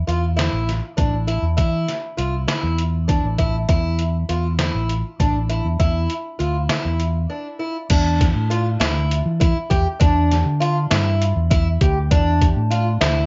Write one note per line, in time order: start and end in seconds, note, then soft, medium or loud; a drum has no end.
0.07 0.48 E2 medium
0.07 0.24 F4 medium
0.07 closed hi-hat medium
0.36 0.70 E4 medium
0.36 snare medium
0.36 closed hi-hat medium
0.53 0.80 A1 medium
0.69 snare soft
0.69 closed hi-hat soft
0.97 1.38 A1 medium
0.97 1.14 D4 medium
0.97 kick medium
0.97 closed hi-hat medium
1.28 1.44 E4 medium
1.28 closed hi-hat soft
1.42 1.56 E2 medium
1.57 1.85 E3 medium
1.57 1.90 E4 medium
1.57 kick medium
1.57 closed hi-hat medium
1.89 snare soft
1.89 closed hi-hat medium
2.18 2.45 C2 medium
2.18 2.34 F4 medium
2.18 closed hi-hat medium
2.48 2.81 E4 medium
2.48 snare medium
2.48 closed hi-hat medium
2.63 3.17 E2 medium
2.78 closed hi-hat medium
3.08 3.25 D4 medium
3.08 kick medium
3.08 closed hi-hat medium
3.24 3.64 A1 medium
3.38 3.55 E4 medium
3.38 kick medium
3.38 closed hi-hat medium
3.68 4.23 E2 loud
3.68 4.02 E4 medium
3.68 kick medium
3.68 closed hi-hat medium
3.98 closed hi-hat medium
4.29 4.69 E2 medium
4.29 4.45 F4 medium
4.29 closed hi-hat medium
4.58 4.92 E4 medium
4.58 snare medium
4.58 closed hi-hat medium
4.74 5.01 A1 medium
4.89 closed hi-hat medium
5.19 5.60 A1 medium
5.19 5.36 D4 medium
5.19 kick medium
5.19 closed hi-hat medium
5.49 5.66 E4 medium
5.49 closed hi-hat soft
5.65 5.78 E2 medium
5.79 6.07 E2 medium
5.79 6.13 E4 medium
5.79 kick medium
5.79 closed hi-hat medium
6.10 closed hi-hat medium
6.39 6.67 D2 medium
6.39 6.56 F4 medium
6.39 closed hi-hat soft
6.69 7.03 E4 medium
6.69 snare loud
6.69 closed hi-hat medium
6.85 7.25 E2 medium
7.00 closed hi-hat medium
7.30 7.46 D4 medium
7.59 7.76 E4 medium
7.90 8.31 E2 loud
7.90 8.23 D4 medium
7.90 kick medium
7.90 closed hi-hat medium
7.90 crash medium
8.21 kick medium
8.21 snare soft
8.21 closed hi-hat medium
8.35 8.76 A2 medium
8.50 8.67 F4 medium
8.50 closed hi-hat medium
8.79 9.21 D2 medium
8.79 9.13 E4 medium
8.79 snare loud
8.79 closed hi-hat medium
9.11 closed hi-hat medium
9.25 9.52 E3 medium
9.40 9.57 E4 medium
9.40 kick loud
9.40 closed hi-hat medium
9.70 9.84 E2 medium
9.70 9.87 G4 medium
9.70 kick medium
9.70 closed hi-hat soft
10.00 10.41 E2 medium
10.00 10.33 D4 medium
10.00 kick loud
10.00 closed hi-hat medium
10.31 snare soft
10.31 closed hi-hat medium
10.45 10.86 D3 medium
10.60 10.77 F4 medium
10.60 closed hi-hat medium
10.90 11.31 G2 medium
10.90 11.24 E4 medium
10.90 snare loud
10.90 closed hi-hat medium
11.22 closed hi-hat medium
11.36 11.76 E2 medium
11.51 11.67 E4 medium
11.51 kick loud
11.51 closed hi-hat medium
11.81 12.08 D2 medium
11.81 11.98 G4 medium
11.81 kick medium
11.81 closed hi-hat medium
12.11 12.52 E2 loud
12.11 12.44 D4 medium
12.11 kick loud
12.11 closed hi-hat medium
12.42 kick medium
12.42 closed hi-hat medium
12.56 12.97 A2 medium
12.71 12.87 F4 medium
12.71 closed hi-hat medium
13.01 13.26 D2 loud
13.01 13.26 E4 medium
13.01 snare loud
13.01 closed hi-hat medium